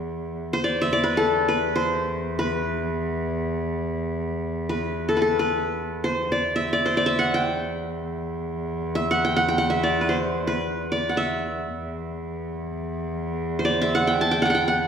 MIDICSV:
0, 0, Header, 1, 3, 480
1, 0, Start_track
1, 0, Tempo, 500000
1, 14281, End_track
2, 0, Start_track
2, 0, Title_t, "Qanun"
2, 0, Program_c, 0, 107
2, 511, Note_on_c, 0, 72, 76
2, 615, Note_on_c, 0, 74, 71
2, 783, Note_on_c, 0, 76, 79
2, 886, Note_off_c, 0, 74, 0
2, 890, Note_on_c, 0, 74, 77
2, 995, Note_on_c, 0, 71, 76
2, 1052, Note_off_c, 0, 72, 0
2, 1125, Note_on_c, 0, 69, 76
2, 1421, Note_off_c, 0, 71, 0
2, 1425, Note_on_c, 0, 71, 73
2, 1665, Note_off_c, 0, 76, 0
2, 1685, Note_on_c, 0, 72, 74
2, 1743, Note_off_c, 0, 71, 0
2, 1837, Note_off_c, 0, 74, 0
2, 2250, Note_off_c, 0, 69, 0
2, 2292, Note_on_c, 0, 71, 68
2, 2350, Note_off_c, 0, 72, 0
2, 3591, Note_off_c, 0, 71, 0
2, 4506, Note_on_c, 0, 71, 58
2, 4883, Note_on_c, 0, 69, 64
2, 4956, Note_off_c, 0, 71, 0
2, 4960, Note_on_c, 0, 71, 53
2, 5005, Note_off_c, 0, 69, 0
2, 5009, Note_on_c, 0, 69, 62
2, 5174, Note_off_c, 0, 71, 0
2, 5178, Note_on_c, 0, 71, 64
2, 5798, Note_on_c, 0, 72, 66
2, 5856, Note_off_c, 0, 71, 0
2, 6065, Note_on_c, 0, 74, 69
2, 6134, Note_off_c, 0, 69, 0
2, 6295, Note_on_c, 0, 76, 70
2, 6455, Note_off_c, 0, 74, 0
2, 6459, Note_on_c, 0, 74, 72
2, 6578, Note_off_c, 0, 72, 0
2, 6582, Note_on_c, 0, 72, 67
2, 6688, Note_off_c, 0, 74, 0
2, 6691, Note_on_c, 0, 74, 74
2, 6775, Note_off_c, 0, 76, 0
2, 6779, Note_on_c, 0, 76, 78
2, 6900, Note_on_c, 0, 78, 79
2, 7047, Note_on_c, 0, 79, 75
2, 7105, Note_off_c, 0, 78, 0
2, 7598, Note_off_c, 0, 72, 0
2, 7638, Note_off_c, 0, 74, 0
2, 7661, Note_off_c, 0, 76, 0
2, 7990, Note_off_c, 0, 79, 0
2, 8594, Note_on_c, 0, 76, 77
2, 8744, Note_on_c, 0, 78, 77
2, 8877, Note_on_c, 0, 79, 80
2, 8934, Note_off_c, 0, 78, 0
2, 8990, Note_on_c, 0, 78, 84
2, 9048, Note_off_c, 0, 79, 0
2, 9105, Note_on_c, 0, 79, 77
2, 9163, Note_off_c, 0, 78, 0
2, 9197, Note_on_c, 0, 78, 80
2, 9255, Note_off_c, 0, 79, 0
2, 9307, Note_off_c, 0, 76, 0
2, 9311, Note_on_c, 0, 76, 74
2, 9441, Note_on_c, 0, 74, 72
2, 9611, Note_on_c, 0, 71, 48
2, 9686, Note_on_c, 0, 72, 63
2, 9744, Note_off_c, 0, 71, 0
2, 10019, Note_off_c, 0, 78, 0
2, 10055, Note_on_c, 0, 71, 69
2, 10113, Note_off_c, 0, 72, 0
2, 10193, Note_off_c, 0, 76, 0
2, 10388, Note_off_c, 0, 74, 0
2, 10481, Note_on_c, 0, 74, 65
2, 10650, Note_on_c, 0, 78, 51
2, 10724, Note_on_c, 0, 76, 74
2, 11103, Note_off_c, 0, 71, 0
2, 11427, Note_off_c, 0, 74, 0
2, 11472, Note_off_c, 0, 78, 0
2, 12270, Note_off_c, 0, 76, 0
2, 13047, Note_on_c, 0, 72, 55
2, 13102, Note_on_c, 0, 74, 70
2, 13263, Note_on_c, 0, 76, 75
2, 13390, Note_on_c, 0, 78, 79
2, 13511, Note_on_c, 0, 79, 78
2, 13569, Note_off_c, 0, 78, 0
2, 13642, Note_on_c, 0, 81, 77
2, 13737, Note_off_c, 0, 79, 0
2, 13741, Note_on_c, 0, 79, 77
2, 13843, Note_on_c, 0, 78, 81
2, 13872, Note_off_c, 0, 79, 0
2, 13876, Note_on_c, 0, 79, 65
2, 13916, Note_off_c, 0, 78, 0
2, 13919, Note_on_c, 0, 78, 75
2, 13962, Note_off_c, 0, 79, 0
2, 13966, Note_on_c, 0, 79, 78
2, 14023, Note_off_c, 0, 78, 0
2, 14049, Note_off_c, 0, 74, 0
2, 14063, Note_off_c, 0, 72, 0
2, 14091, Note_on_c, 0, 78, 77
2, 14145, Note_off_c, 0, 76, 0
2, 14149, Note_off_c, 0, 79, 0
2, 14281, Note_off_c, 0, 78, 0
2, 14281, Note_off_c, 0, 81, 0
2, 14281, End_track
3, 0, Start_track
3, 0, Title_t, "Cello"
3, 0, Program_c, 1, 42
3, 0, Note_on_c, 1, 40, 58
3, 902, Note_off_c, 1, 40, 0
3, 907, Note_on_c, 1, 40, 63
3, 6113, Note_off_c, 1, 40, 0
3, 6118, Note_on_c, 1, 40, 60
3, 11286, Note_off_c, 1, 40, 0
3, 11292, Note_on_c, 1, 40, 63
3, 14281, Note_off_c, 1, 40, 0
3, 14281, End_track
0, 0, End_of_file